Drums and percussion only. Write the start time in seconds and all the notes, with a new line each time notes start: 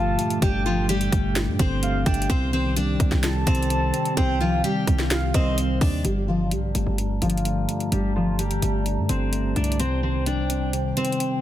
0.19 closed hi-hat
0.30 closed hi-hat
0.42 kick, closed hi-hat
0.89 closed hi-hat
1.01 closed hi-hat
1.12 kick, closed hi-hat
1.36 snare, closed hi-hat
1.59 kick, closed hi-hat
1.83 closed hi-hat
2.06 kick, closed hi-hat
2.14 closed hi-hat
2.22 closed hi-hat
2.30 kick, closed hi-hat
2.77 closed hi-hat
3.00 kick, closed hi-hat
3.12 kick, snare
3.23 snare, closed hi-hat
3.47 kick, closed hi-hat
3.55 closed hi-hat
3.63 closed hi-hat
3.70 closed hi-hat
3.94 closed hi-hat
4.05 closed hi-hat
4.17 kick, closed hi-hat
4.64 closed hi-hat
4.87 kick, closed hi-hat
4.99 snare
5.11 snare, closed hi-hat
5.34 kick, closed hi-hat
5.58 closed hi-hat
5.81 kick, open hi-hat
6.05 closed hi-hat
6.51 closed hi-hat
6.75 closed hi-hat
6.98 closed hi-hat
7.22 closed hi-hat
7.30 closed hi-hat
7.37 closed hi-hat
7.45 closed hi-hat
7.69 closed hi-hat
7.80 closed hi-hat
7.92 closed hi-hat
8.39 closed hi-hat
8.51 closed hi-hat
8.62 closed hi-hat
8.86 closed hi-hat
9.09 closed hi-hat
9.33 closed hi-hat
9.56 closed hi-hat
9.64 closed hi-hat
9.72 closed hi-hat
9.80 closed hi-hat
10.26 closed hi-hat
10.50 closed hi-hat
10.73 closed hi-hat
10.97 closed hi-hat
11.05 closed hi-hat
11.12 closed hi-hat
11.20 closed hi-hat